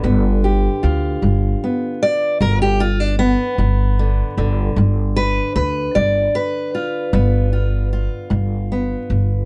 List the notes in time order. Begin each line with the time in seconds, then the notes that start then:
Already playing: D3
0.03 G1 G2 B3
0.44 G4
0.83 D2 F4
1.22 G1 G2
1.64 B3
2.03 D5
2.40 G1 G2 A#4
2.62 G4
2.80 F4
3.00 D4
3.19 B3
3.58 G1 G2
3.99 D3
4.38 G1 D3
4.76 G1 G2
5.16 B4
5.56 D2 B4
5.95 G1 G2 D5
6.35 B4
6.75 F4
7.13 G1 G2 B3
7.53 F4
7.93 F4
8.30 G1 G2
8.72 B3
9.10 G1